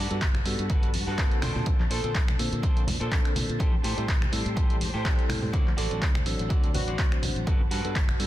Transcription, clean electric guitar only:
0.00 0.21 F#4 medium
0.00 0.21 A4 medium
0.00 0.22 D5 loud
0.45 muted clean electric guitar stroke soft
0.69 0.89 F#4 medium
0.69 0.89 A4 medium
0.69 0.89 B4 medium
1.07 1.37 F#4 loud
1.07 1.37 A4 medium
1.07 1.37 B4 loud
1.42 1.82 D4 medium
1.42 1.82 A4 medium
1.42 1.82 C5 loud
1.90 2.15 D4 medium
1.90 2.15 A4 medium
1.90 2.15 C5 loud
2.39 muted clean electric guitar stroke soft
2.63 2.82 D4 medium
2.63 2.82 A4 medium
2.63 2.82 C5 loud
3.00 3.30 D4 medium
3.00 3.30 A4 medium
3.00 3.30 C5 medium
3.60 3.73 G4 loud
3.60 3.73 A4 medium
3.60 3.74 C5 loud
3.84 4.08 G4 medium
3.84 4.08 A4 medium
3.84 4.09 C5 medium
4.32 muted clean electric guitar stroke soft
4.56 4.75 G4 medium
4.56 4.75 A4 medium
4.56 4.76 C5 loud
4.94 5.24 G4 medium
4.94 5.24 A4 medium
4.94 5.24 C5 medium
5.53 5.67 F#4 loud
5.53 5.67 C5 loud
5.53 5.67 D5 loud
5.77 6.02 F#4 medium
5.77 6.02 C5 medium
5.77 6.02 D5 loud
6.26 muted clean electric guitar stroke soft
6.49 6.69 F#4 medium
6.49 6.69 C5 medium
6.49 6.69 D5 medium
6.88 7.17 F#4 medium
6.88 7.17 C5 medium
6.88 7.18 D5 medium
7.47 7.60 F#4 loud
7.47 7.60 A4 medium
7.47 7.61 B4 loud
7.71 7.95 F#4 loud
7.71 7.96 A4 medium
7.71 7.96 B4 loud
8.19 muted clean electric guitar stroke soft

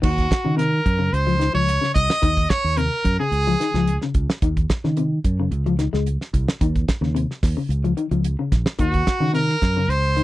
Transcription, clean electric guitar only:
0.02 0.17 D#3 medium
0.45 0.52 C#3 medium
0.57 0.72 C3 medium
0.99 1.14 C#3 medium
1.27 1.34 F3 medium
1.39 1.48 D#3 medium
1.54 1.69 F3 medium
1.81 1.97 C#3 medium
2.22 2.37 D#3 medium
2.77 2.92 C3 medium
3.20 3.34 C#3 medium
3.47 3.54 F3 medium
3.60 3.68 D#3 medium
3.75 3.89 F3 medium
4.03 4.17 C#3 medium
4.42 4.57 D#3 medium
4.85 4.91 C#3 medium
4.97 5.12 C3 medium
5.40 5.54 C#3 medium
5.66 5.73 F3 medium
5.79 5.87 D#3 medium
5.93 6.08 G#3 medium
6.61 6.76 D#3 medium
7.02 7.09 C#3 medium
7.15 7.30 C3 medium
7.57 7.72 C#3 medium
7.84 7.91 F3 medium
7.97 8.05 D#3 medium
8.11 8.27 F3 medium
8.39 8.54 C#3 medium
8.79 8.94 D#3 medium
9.21 9.28 C#3 medium
9.33 9.49 C3 medium
9.77 9.92 C#3 medium
10.17 10.23 D#3 medium

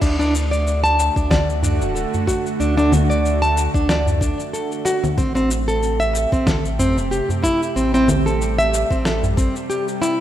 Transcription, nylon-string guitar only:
0.01 0.18 D4 medium
0.19 0.33 D4 loud
0.51 0.82 D5 medium
0.84 1.14 A5 loud
1.16 1.29 D4 medium
1.31 1.48 D5 medium
1.63 1.80 D4 medium
1.95 2.12 A4 medium
2.27 2.44 F#4 medium
2.60 2.76 D4 medium
2.77 2.91 D4 loud
3.10 3.40 D5 medium
3.42 3.73 A5 loud
3.74 3.87 D4 medium
3.89 4.06 D5 medium
4.21 4.38 D4 medium
4.53 4.70 A4 medium
4.85 5.02 F#4 loud
5.18 5.34 C4 medium
5.35 5.49 C4 loud
5.68 5.98 A4 medium
6.00 6.30 E5 loud
6.33 6.45 C4 medium
6.47 6.64 A4 medium
6.79 6.96 C4 medium
7.11 7.28 G4 medium
7.44 7.61 E4 loud
7.76 7.93 C4 medium
7.94 8.08 C4 loud
8.26 8.56 A4 medium
8.59 8.89 E5 loud
8.91 9.04 C4 medium
9.06 9.22 A4 medium
9.37 9.54 C4 medium
9.70 9.86 G4 medium
10.02 10.19 E4 loud

